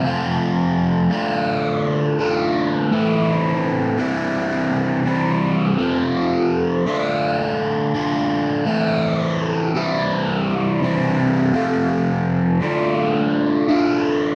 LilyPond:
\new Staff \with { instrumentName = "Overdriven electric guitar" } { \time 4/4 \key d \minor \tempo 4 = 84 <f, c f a c' f'>4. <d a d' f'>4. <d a d' f'>4 | <a, e a c' e'>4. <c e g c' e'>4. <c e g c' e'>4 | <f, c f a c' f'>4. <d a d' f'>4. <d a d' f'>4 | <a, e a c' e'>4. <c e g c' e'>4. <c e g c' e'>4 |
<f, c f a c' f'>4. <d a d' f'>4. <d a d' f'>4 | }